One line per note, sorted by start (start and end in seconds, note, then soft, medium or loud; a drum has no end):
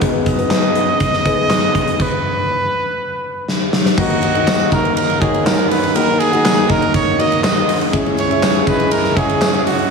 0.01 1.96 B1 medium
0.01 1.96 B2 medium
0.01 0.35 B3 medium
0.01 0.35 D#4 medium
0.01 0.35 G#4 medium
0.01 0.35 B4 medium
0.01 kick loud
0.01 closed hi-hat medium
0.26 2.03 D#5 loud
0.26 kick medium
0.26 closed hi-hat medium
0.38 1.16 B3 medium
0.38 1.16 D#4 medium
0.38 1.16 G#4 medium
0.38 1.17 B4 medium
0.38 closed hi-hat soft
0.50 snare medium
0.50 clap medium
0.50 closed hi-hat medium
0.75 closed hi-hat medium
1.00 kick medium
1.00 closed hi-hat medium
1.13 snare soft
1.25 1.92 B3 medium
1.25 1.92 D#4 medium
1.25 1.92 G#4 medium
1.25 1.92 B4 medium
1.25 kick medium
1.25 closed hi-hat medium
1.50 snare loud
1.50 clap medium
1.50 closed hi-hat medium
1.75 kick medium
1.75 closed hi-hat medium
1.88 closed hi-hat soft
2.00 3.49 B4 medium
2.00 kick medium
2.00 crash medium
3.48 snare soft
3.73 snare medium
3.85 snare medium
3.97 5.92 D#2 medium
3.97 7.89 D#2 medium
3.97 5.91 D#3 medium
3.97 7.89 D#3 medium
3.97 4.31 A#3 medium
3.97 4.31 D#4 medium
3.97 7.89 F#4 medium
3.97 4.31 F#4 medium
3.97 4.69 F#4 medium
3.97 7.89 A#4 medium
3.97 4.31 A#4 medium
3.97 4.31 D#5 medium
3.97 kick loud
3.97 crash loud
4.10 ride soft
4.21 ride medium
4.21 tambourine soft
4.34 4.68 A#3 medium
4.34 4.68 D#4 medium
4.34 4.68 F#4 medium
4.34 4.68 A#4 medium
4.34 4.68 D#5 medium
4.34 ride soft
4.47 snare loud
4.47 clap medium
4.47 ride medium
4.47 tambourine medium
4.60 ride soft
4.71 5.16 A#3 medium
4.71 5.16 D#4 medium
4.71 5.16 F#4 medium
4.71 5.16 A#4 medium
4.71 4.95 A#4 loud
4.71 5.16 F#5 medium
4.71 kick medium
4.71 ride medium
4.71 tambourine medium
4.85 ride soft
4.96 5.22 A#4 loud
4.96 ride medium
4.96 tambourine soft
5.10 ride soft
5.21 5.87 A#3 medium
5.21 5.87 D#4 medium
5.21 5.88 F#4 medium
5.21 5.47 G#4 medium
5.21 5.88 A#4 medium
5.21 5.88 C#5 medium
5.21 kick loud
5.21 ride medium
5.34 ride soft
5.45 5.70 A#4 medium
5.45 snare loud
5.45 clap medium
5.45 ride medium
5.45 tambourine medium
5.59 ride soft
5.70 5.97 B4 medium
5.70 open hi-hat medium
5.70 ride medium
5.70 tambourine soft
5.84 ride soft
5.95 7.89 D#2 medium
5.95 7.89 D#3 medium
5.95 6.28 A#3 medium
5.95 6.28 D#4 medium
5.95 6.29 F#4 medium
5.95 6.21 A#4 loud
5.95 6.29 A#4 medium
5.95 6.29 F#5 medium
5.95 hi-hat pedal medium
5.95 ride medium
6.19 6.72 G#4 loud
6.19 ride medium
6.19 tambourine soft
6.32 6.65 A#3 medium
6.32 6.65 D#4 medium
6.32 6.66 F#4 medium
6.32 6.66 A#4 medium
6.32 6.66 F#5 medium
6.32 ride soft
6.45 snare loud
6.45 clap medium
6.45 ride medium
6.45 tambourine medium
6.57 ride soft
6.68 7.13 A#3 medium
6.68 7.13 D#4 medium
6.68 7.13 F#4 medium
6.68 7.14 A#4 medium
6.68 6.94 A#4 loud
6.68 7.14 D#5 medium
6.68 kick medium
6.68 ride medium
6.68 tambourine medium
6.82 ride soft
6.94 7.21 C#5 loud
6.94 kick medium
6.94 ride medium
6.94 tambourine medium
7.18 7.84 A#3 medium
7.18 7.85 D#4 medium
7.18 7.85 F#4 medium
7.18 7.85 A#4 medium
7.18 7.85 D#5 medium
7.18 7.44 D#5 loud
7.18 ride medium
7.18 tambourine soft
7.32 ride soft
7.44 7.78 D#5 medium
7.44 snare loud
7.44 clap medium
7.44 ride medium
7.44 tambourine medium
7.69 open hi-hat medium
7.69 ride medium
7.69 tambourine medium
7.81 ride soft
7.92 9.87 C#2 medium
7.92 9.90 C#3 medium
7.92 9.87 C#3 medium
7.92 8.26 C#4 medium
7.92 9.90 C#4 medium
7.92 8.26 E4 medium
7.92 9.90 E4 medium
7.92 9.90 G#4 medium
7.92 8.26 G#4 medium
7.92 8.26 C#5 medium
7.92 8.26 E5 medium
7.92 kick loud
7.92 hi-hat pedal medium
7.92 ride medium
8.06 ride soft
8.17 8.69 C#5 medium
8.17 ride medium
8.17 tambourine soft
8.30 8.63 C#4 medium
8.30 8.63 E4 medium
8.30 8.63 G#4 medium
8.30 8.63 C#5 medium
8.30 8.64 E5 medium
8.30 ride soft
8.43 snare loud
8.43 clap medium
8.43 ride medium
8.43 tambourine medium
8.55 ride soft
8.66 9.11 C#4 medium
8.66 9.11 E4 medium
8.66 9.11 G#4 medium
8.66 8.93 B4 loud
8.66 9.11 C#5 medium
8.66 9.11 D#5 medium
8.66 kick medium
8.66 ride medium
8.66 tambourine medium
8.80 ride soft
8.91 9.18 A#4 medium
8.91 ride medium
8.91 tambourine medium
9.04 snare soft
9.16 9.82 C#4 medium
9.16 9.83 E4 medium
9.16 9.65 G#4 medium
9.16 9.83 G#4 medium
9.16 9.83 C#5 medium
9.16 9.83 F#5 medium
9.16 kick medium
9.16 ride medium
9.16 tambourine soft
9.29 ride soft
9.41 snare loud
9.41 clap medium
9.41 ride medium
9.41 tambourine medium
9.54 ride soft
9.66 9.90 F#4 medium
9.66 open hi-hat medium
9.66 ride medium
9.66 tambourine medium
9.79 ride soft